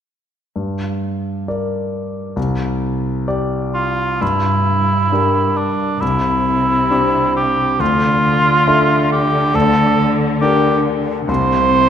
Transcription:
0.56 G2
1.48 A#4 D5
2.36 C2
3.28 G4 D5
3.74 F4
4.20 G2 E4
5.12 D4 G4 A#4
5.57 D4
6.00 C2 C3 E4
6.91 D4 G4 C5
7.37 G4
7.79 D2 D3 F4
8.67 D4 A4 E5
9.12 G4
9.54 D2 A4
10.41 D4 G4 A#4
11.28 C2 C3 C5

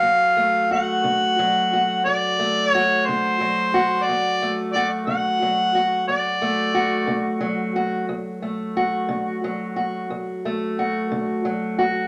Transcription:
Already playing: F#3 A3 F#4 F5
0.03 D2
0.37 A3
0.71 F#4 F#5
1.04 D3
1.39 F#3
1.73 F#4
2.05 D2 D5
2.39 A3
2.70 C#5
2.75 F#4
3.06 D3 C5
3.41 F#3
3.74 F#4
4.03 D5
4.09 D2
4.42 A3
4.73 F#4 D5
5.07 D3 F#5
5.42 F#3
5.75 F#4
6.08 D2 D5
6.42 A3
6.75 F#4
7.07 D3
7.41 F#3
7.76 F#4
8.09 D2
8.42 A3
8.77 F#4
9.09 D3
9.44 F#3
9.76 F#4
10.10 D2
10.45 A3
10.79 F#4
11.12 D3
11.45 F#3
11.79 F#4

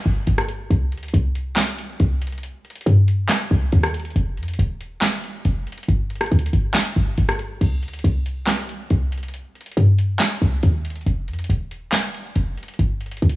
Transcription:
0.06 G1
0.27 G1, closed hi-hat
0.38 cross-stick
0.49 closed hi-hat
0.70 C2, closed hi-hat
0.92 D2, closed hi-hat
0.97 closed hi-hat
1.03 closed hi-hat
1.08 closed hi-hat
1.14 C2, closed hi-hat
1.35 closed hi-hat
1.56 snare, clap, closed hi-hat
1.78 closed hi-hat
2.00 C2, closed hi-hat
2.22 closed hi-hat
2.27 closed hi-hat
2.32 closed hi-hat
2.38 closed hi-hat
2.43 closed hi-hat
2.65 closed hi-hat
2.70 closed hi-hat
2.76 closed hi-hat
2.81 closed hi-hat
2.86 G2, closed hi-hat
3.08 closed hi-hat
3.29 snare, clap, closed hi-hat
3.51 C2
3.72 D#2, closed hi-hat
3.83 cross-stick
3.94 closed hi-hat
4.00 closed hi-hat
4.05 closed hi-hat
4.10 closed hi-hat
4.16 F1, closed hi-hat
4.37 F2, closed hi-hat
4.43 closed hi-hat
4.48 closed hi-hat
4.54 closed hi-hat
4.59 D#1, closed hi-hat
4.81 closed hi-hat
5.02 snare, clap, closed hi-hat
5.24 closed hi-hat
5.45 F1, closed hi-hat
5.67 closed hi-hat
5.72 closed hi-hat
5.78 closed hi-hat
5.83 closed hi-hat
5.88 G1, closed hi-hat
6.10 closed hi-hat
6.15 closed hi-hat
6.21 cross-stick, closed hi-hat
6.26 closed hi-hat
6.32 D2, closed hi-hat
6.39 closed hi-hat
6.46 closed hi-hat
6.53 G1, closed hi-hat
6.74 snare, clap, closed hi-hat
6.96 G1
7.18 G1, closed hi-hat
7.29 cross-stick
7.39 closed hi-hat
7.61 C2, closed hi-hat, crash
7.83 D2, closed hi-hat
7.88 closed hi-hat
7.93 closed hi-hat
7.99 closed hi-hat
8.04 C2, closed hi-hat
8.26 closed hi-hat
8.47 snare, clap, closed hi-hat
8.69 closed hi-hat
8.90 C2, closed hi-hat
9.12 closed hi-hat
9.18 closed hi-hat
9.23 closed hi-hat
9.28 closed hi-hat
9.34 closed hi-hat
9.55 closed hi-hat
9.61 closed hi-hat
9.66 closed hi-hat
9.72 closed hi-hat
9.77 G2, closed hi-hat
9.99 closed hi-hat
10.20 snare, clap, closed hi-hat
10.42 C2
10.63 D#2, closed hi-hat
10.85 closed hi-hat
10.90 closed hi-hat
10.96 closed hi-hat
11.01 closed hi-hat
11.06 F1, closed hi-hat
11.28 F2, closed hi-hat
11.33 closed hi-hat
11.39 closed hi-hat
11.44 closed hi-hat
11.50 D#1, closed hi-hat
11.71 closed hi-hat
11.92 snare, clap, closed hi-hat
12.14 closed hi-hat
12.36 F1, closed hi-hat
12.57 closed hi-hat
12.63 closed hi-hat
12.68 closed hi-hat
12.74 closed hi-hat
12.79 G1, closed hi-hat
13.01 closed hi-hat
13.06 closed hi-hat
13.11 closed hi-hat
13.17 closed hi-hat
13.22 D2, closed hi-hat
13.29 closed hi-hat

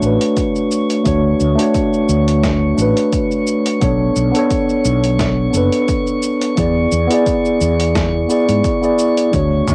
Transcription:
Already playing: F#4 C#5 C#6
0.00 A1 A3 D4 F#4, cabasa
0.06 B4
0.21 closed hi-hat, cabasa
0.37 kick, closed hi-hat, cabasa
0.56 cabasa
0.71 cabasa
0.90 closed hi-hat, cabasa
1.04 D2 A3 D4 F#4 C#5, kick, closed hi-hat, cabasa
1.40 D2, cabasa
1.55 A3 D4, closed hi-hat, cabasa
1.60 F#4 C#5
1.74 kick, closed hi-hat, cabasa
1.93 cabasa
2.09 D2, cabasa
2.28 closed hi-hat, cabasa
2.44 kick, snare, closed hi-hat, cabasa
2.75 A1 A3 D4, cabasa
2.79 F#4 B4
2.97 closed hi-hat, cabasa
3.13 kick, closed hi-hat, cabasa
3.31 cabasa
3.47 cabasa
3.66 closed hi-hat, cabasa
3.80 B1 B3 D4 A4 C#5, kick, closed hi-hat, cabasa
4.16 B1, cabasa
4.32 B3 D4, closed hi-hat, cabasa
4.36 A4 C#5
4.50 kick, closed hi-hat, cabasa
4.69 cabasa
4.85 B1, cabasa
5.04 closed hi-hat, cabasa
5.19 kick, snare, closed hi-hat, cabasa
5.50 F#1 B3 D4, cabasa
5.55 A4 B4
5.72 closed hi-hat, cabasa
5.88 kick, closed hi-hat, cabasa
6.07 cabasa
6.22 cabasa
6.41 closed hi-hat, cabasa
6.56 E2 B3 E4 G#4 D5, kick, closed hi-hat, cabasa
6.92 E2, cabasa
7.07 B3 E4, closed hi-hat, cabasa
7.12 G#4 D5
7.26 kick, closed hi-hat, cabasa
7.45 cabasa
7.61 E2, cabasa
7.80 closed hi-hat, cabasa
7.95 kick, snare, closed hi-hat, cabasa
8.28 B3 E4 G#4 D5, cabasa
8.49 G#2, closed hi-hat, cabasa
8.64 kick, closed hi-hat, cabasa
8.81 B3 E4 G#4 D5, cabasa
8.99 cabasa
9.17 closed hi-hat, cabasa
9.32 D2 A3 D4 F#4 C#5, kick, closed hi-hat, cabasa
9.68 D2, mid tom, cabasa

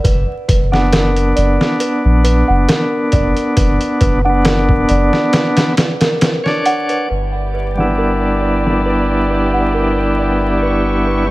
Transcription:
0.04 F#1 B4, kick, closed hi-hat
0.48 F#1 B4, kick, closed hi-hat
0.72 D4 F#5, snare
0.76 B3
0.93 A#4, snare, closed hi-hat
1.16 closed hi-hat
1.36 F#1 D5, closed hi-hat
1.61 snare
1.80 B4, closed hi-hat
2.05 A#1
2.24 B4, closed hi-hat
2.48 F#1 F#5
2.68 A#4, snare, closed hi-hat
3.12 F#1 D5, kick, closed hi-hat
3.37 closed hi-hat
3.56 F#1 B4, kick, closed hi-hat
3.81 closed hi-hat
4.01 F#1 B4, kick, closed hi-hat
4.25 D4 F#5
4.30 B3
4.45 A#4, snare, closed hi-hat
4.69 kick
4.89 F#1 D5, closed hi-hat
5.13 snare
5.33 B4, snare, closed hi-hat
5.57 snare, closed hi-hat
5.77 B4, snare, closed hi-hat
6.01 A#4, snare, closed hi-hat
6.21 B4, snare, closed hi-hat
6.44 D4 C#5, snare
6.48 D5
6.66 F#5, closed hi-hat
6.89 B4, closed hi-hat
7.08 G1 B3 E4 G4 B4 D5, closed hi-hat
7.54 B4, closed hi-hat
7.75 G3 D4 F#5, snare
7.80 B3 E4
7.98 A#4, closed hi-hat
8.42 D5, closed hi-hat
8.66 snare
8.86 B4, closed hi-hat
9.30 B4, closed hi-hat
9.54 F#5
9.74 A#4, closed hi-hat
10.18 D5, closed hi-hat
10.63 B4 C#6, closed hi-hat
11.07 B4
11.27 G3

